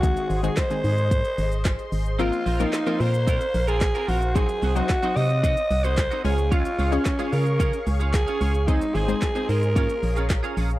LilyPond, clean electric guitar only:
\new Staff \with { instrumentName = "Clean electric guitar" } { \time 4/4 \key bes \minor \tempo 4 = 111 r1 | <c' f' bes'>16 r16 <c' f' bes'>16 <c' f' bes'>16 r16 <c' f' bes'>16 <c' f' bes'>16 r16 <c' f' bes'>16 r8 <c' f' bes'>16 r16 <c' f' bes'>16 <c' f' bes'>16 r16 | <c' ees' ges'>16 r16 <c' ees' ges'>16 <c' ees' ges'>16 r16 <c' ees' ges'>16 <c' ees' ges'>16 r16 <c' ees' ges'>16 r8 <c' ees' ges'>16 r16 <c' ees' ges'>16 <des' f' aes'>16 r16 | <des' f' aes'>16 r16 <des' f' aes'>16 <des' f' aes'>16 r16 <des' f' aes'>16 <des' f' aes'>16 r16 <des' f' aes'>16 r8 <des' f' aes'>16 r16 <des' f' aes'>16 <des' f' aes'>16 r16 |
<c' ees' aes'>16 r16 <c' ees' aes'>16 <c' ees' aes'>16 r16 <c' ees' aes'>16 <c' ees' aes'>16 r16 <des' f' aes'>16 r8 <des' f' aes'>16 r16 <des' f' aes'>16 <des' f' aes'>16 r16 | }